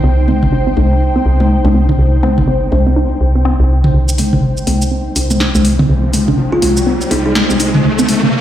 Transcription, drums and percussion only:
0.28 high tom
0.43 mid tom
0.77 high tom
1.40 high tom
1.65 high tom
1.89 mid tom
2.23 high tom
2.38 mid tom
2.72 high tom
3.84 mid tom
4.09 shaker
4.18 open hi-hat, high tom, shaker
4.33 mid tom
4.57 shaker
4.67 open hi-hat, high tom
4.82 shaker
5.16 open hi-hat, shaker
5.30 high tom, shaker
5.40 snare
5.55 high tom, shaker
5.65 open hi-hat
5.79 mid tom
6.13 open hi-hat, high tom, shaker
6.28 mid tom
6.62 open hi-hat, high tom
6.77 shaker
7.01 shaker
7.11 open hi-hat
7.35 snare
7.50 shaker
7.60 open hi-hat, shaker
7.74 mid tom
7.99 shaker
8.09 open hi-hat, high tom, shaker
8.23 mid tom

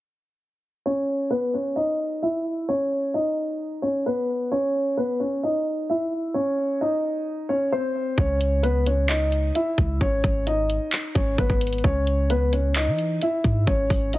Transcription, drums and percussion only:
8.18 kick, closed hi-hat
8.41 closed hi-hat
8.64 closed hi-hat
8.87 closed hi-hat
9.09 clap, closed hi-hat
9.32 closed hi-hat
9.55 closed hi-hat
9.78 kick, closed hi-hat
10.01 kick, closed hi-hat
10.24 kick, closed hi-hat
10.47 closed hi-hat
10.70 closed hi-hat
10.92 clap, closed hi-hat
11.15 kick, closed hi-hat
11.38 kick, closed hi-hat
11.50 kick
11.61 closed hi-hat
11.67 closed hi-hat
11.73 closed hi-hat
11.78 closed hi-hat
11.84 kick, closed hi-hat
12.07 closed hi-hat
12.30 closed hi-hat
12.53 closed hi-hat
12.76 clap, closed hi-hat
12.99 closed hi-hat
13.22 closed hi-hat
13.44 kick, closed hi-hat
13.67 kick, closed hi-hat
13.90 kick, open hi-hat
14.13 closed hi-hat

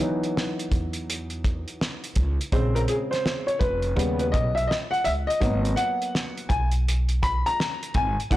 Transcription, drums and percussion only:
0.23 closed hi-hat
0.37 snare
0.59 closed hi-hat
0.72 kick, closed hi-hat
0.93 closed hi-hat
1.10 closed hi-hat
1.30 closed hi-hat
1.44 kick, closed hi-hat
1.68 closed hi-hat
1.81 snare
2.04 closed hi-hat
2.15 kick, closed hi-hat
2.41 closed hi-hat
2.52 kick, closed hi-hat
2.76 closed hi-hat
2.88 closed hi-hat
3.13 snare, closed hi-hat
3.26 snare
3.48 closed hi-hat
3.61 kick, closed hi-hat
3.82 closed hi-hat
3.99 closed hi-hat
4.19 closed hi-hat
4.34 kick, closed hi-hat
4.57 closed hi-hat
4.71 snare
4.94 closed hi-hat
5.05 closed hi-hat
5.30 closed hi-hat
5.42 kick, closed hi-hat
5.65 closed hi-hat
5.77 closed hi-hat
6.02 closed hi-hat
6.15 snare
6.37 closed hi-hat
6.50 kick, closed hi-hat
6.71 closed hi-hat
6.88 closed hi-hat
7.09 closed hi-hat
7.23 kick, closed hi-hat
7.46 closed hi-hat
7.60 snare
7.83 closed hi-hat
7.94 kick, closed hi-hat
8.20 closed hi-hat
8.31 kick, closed hi-hat

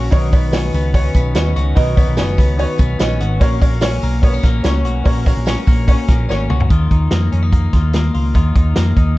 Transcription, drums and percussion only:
0.12 kick, hi-hat pedal, open hi-hat, tambourine
0.33 kick, hi-hat pedal, open hi-hat, tambourine
0.52 snare, hi-hat pedal, open hi-hat, tambourine
0.73 hi-hat pedal, open hi-hat, tambourine
0.94 kick, hi-hat pedal, open hi-hat, tambourine
1.14 kick, hi-hat pedal, open hi-hat, tambourine
1.35 snare, hi-hat pedal, open hi-hat, tambourine
1.56 hi-hat pedal, open hi-hat, tambourine
1.76 kick, hi-hat pedal, open hi-hat, tambourine
1.97 kick, hi-hat pedal, open hi-hat, tambourine
2.17 snare, hi-hat pedal, open hi-hat, tambourine
2.37 kick, hi-hat pedal, open hi-hat, tambourine
2.59 hi-hat pedal, open hi-hat
2.78 kick, hi-hat pedal, open hi-hat, tambourine
2.99 snare, hi-hat pedal, open hi-hat, tambourine
3.20 hi-hat pedal, open hi-hat
3.41 kick, hi-hat pedal, open hi-hat, tambourine
3.61 kick, hi-hat pedal, open hi-hat, tambourine
3.81 snare, hi-hat pedal, open hi-hat, tambourine
4.02 hi-hat pedal, open hi-hat, tambourine
4.23 kick, hi-hat pedal, open hi-hat
4.43 kick, snare, hi-hat pedal, open hi-hat, tambourine
4.64 snare, hi-hat pedal, open hi-hat, tambourine
4.85 hi-hat pedal, open hi-hat
5.05 kick, hi-hat pedal, open hi-hat, tambourine
5.26 kick, hi-hat pedal, open hi-hat, tambourine
5.46 snare, hi-hat pedal, open hi-hat, tambourine
5.67 kick, hi-hat pedal, open hi-hat, tambourine
5.88 kick, hi-hat pedal, open hi-hat, tambourine
6.08 kick, snare, hi-hat pedal, open hi-hat, tambourine
6.29 snare, tambourine
6.50 mid tom, tambourine
6.60 floor tom
6.70 kick, closed hi-hat
6.91 kick, closed hi-hat
7.11 snare, closed hi-hat
7.32 closed hi-hat
7.53 kick, closed hi-hat
7.73 kick, snare, closed hi-hat
7.93 snare, closed hi-hat
8.14 open hi-hat
8.35 kick, closed hi-hat
8.56 kick, closed hi-hat
8.76 snare, closed hi-hat
8.97 kick, closed hi-hat

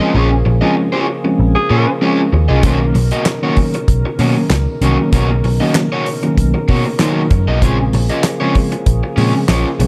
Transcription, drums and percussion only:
2.63 kick, closed hi-hat
2.95 open hi-hat
3.11 closed hi-hat
3.26 snare, clap, closed hi-hat
3.57 kick, open hi-hat
3.74 closed hi-hat
3.88 kick, closed hi-hat
4.19 open hi-hat
4.50 snare, clap, closed hi-hat
4.82 closed hi-hat
5.13 kick, closed hi-hat
5.44 open hi-hat
5.75 snare, clap, closed hi-hat
6.06 open hi-hat
6.23 closed hi-hat
6.38 kick, closed hi-hat
6.68 kick, open hi-hat
6.99 snare, clap, closed hi-hat
7.31 kick, closed hi-hat
7.62 kick, closed hi-hat
7.93 open hi-hat
8.09 closed hi-hat
8.24 snare, clap, closed hi-hat
8.55 kick, open hi-hat
8.72 closed hi-hat
8.86 kick, closed hi-hat
9.18 open hi-hat
9.49 snare, clap, closed hi-hat
9.80 closed hi-hat

